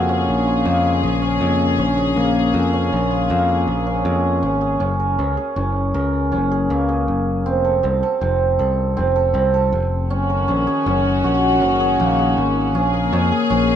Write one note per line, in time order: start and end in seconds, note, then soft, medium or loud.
0.00 0.26 F2 medium
0.00 4.76 C#3 medium
0.00 0.65 A#3 medium
0.00 4.77 A#3 medium
0.00 0.15 C4 medium
0.00 1.06 D#4 medium
0.00 0.53 F#4 medium
0.00 0.84 G#4 medium
0.00 4.76 G#4 medium
0.09 1.21 C#4 medium
0.29 0.64 A#1 medium
0.47 3.10 F4 medium
0.65 1.01 F2 medium
0.65 2.16 A#3 medium
0.84 1.41 G#4 medium
1.03 1.39 A#1 medium
1.22 1.78 C#4 medium
1.41 1.76 F2 medium
1.41 1.97 G#4 medium
1.78 2.14 A#1 medium
1.78 2.73 C#4 medium
1.98 2.53 G#4 medium
2.16 2.52 A#1 medium
2.16 3.29 A#3 medium
2.54 2.90 F2 medium
2.54 3.48 G#4 medium
2.73 3.86 C#4 medium
2.93 3.28 A#1 medium
3.10 6.47 F4 medium
3.30 3.66 F2 medium
3.30 6.70 A#3 medium
3.48 4.05 G#4 medium
3.68 4.03 A#1 medium
3.87 4.42 C#4 medium
4.05 4.41 F2 medium
4.05 4.61 G#4 medium
4.43 4.78 G#1 medium
4.43 4.80 C#4 medium
4.61 5.37 G#4 medium
4.80 5.16 F#1 medium
4.80 5.18 C#4 medium
5.00 5.94 A#4 medium
5.19 5.37 C#2 medium
5.19 5.56 C#4 medium
5.37 6.51 G#4 medium
5.56 5.92 F#1 medium
5.56 6.32 C#4 medium
5.94 6.33 C#2 medium
5.94 7.70 A#4 medium
6.32 6.67 F#1 medium
6.32 7.52 C#4 medium
6.51 6.88 G#4 medium
6.70 7.06 C#2 medium
6.70 7.70 A#3 medium
6.89 7.70 G#4 medium
7.08 7.45 F#1 medium
7.45 7.81 F1 medium
7.45 7.83 C4 medium
7.64 8.02 A4 medium
7.83 8.01 C2 medium
7.83 8.21 C4 medium
8.03 8.58 A4 medium
8.21 8.57 F1 medium
8.21 8.96 C4 medium
8.59 8.99 C2 medium
8.59 9.15 A4 medium
8.97 9.33 F1 medium
8.97 9.34 C4 medium
9.16 9.53 A4 medium
9.34 9.70 C2 medium
9.34 10.16 C4 medium
9.54 10.36 A4 medium
9.72 10.10 F1 medium
10.09 10.46 F#1 medium
10.09 12.72 D#3 medium
10.09 12.72 C#4 medium
10.09 10.48 C#4 medium
10.09 12.72 F#4 medium
10.30 12.93 A#4 medium
10.48 10.66 A#1 medium
10.48 10.86 C#4 medium
10.67 11.80 G#4 medium
10.86 11.22 F#1 medium
10.86 11.61 C#4 medium
11.24 11.62 A#1 medium
11.24 13.76 F#4 medium
11.61 11.97 F#1 medium
11.61 12.74 C#4 medium
11.80 12.18 G#4 medium
12.00 12.35 A#1 medium
12.00 13.76 A#3 medium
12.19 13.32 G#4 medium
12.37 12.75 G#1 medium
12.74 13.11 A#1 medium
12.74 13.76 C#3 medium
12.74 13.76 A#3 medium
12.74 13.13 C#4 medium
12.74 13.76 G#4 medium
12.93 13.76 A#4 medium
13.13 13.31 F2 medium
13.13 13.50 C#4 medium
13.32 13.76 G#4 medium
13.50 13.76 A#1 medium
13.50 13.76 C#4 medium